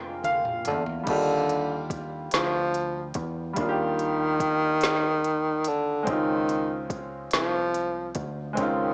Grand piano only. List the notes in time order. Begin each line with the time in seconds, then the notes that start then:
Already playing: G#3 C4 D4 F5 G5 G#5 A#5
0.25 F5
1.03 G3 A#3
1.08 D4 G4
1.12 F4
3.53 G3 A#3
3.58 D4 F4
3.63 F4
3.69 G4
6.03 G#3 C4
6.07 C#4 D#4
6.12 F4
8.53 G#3 C4
8.58 C#4 D#4
8.62 F4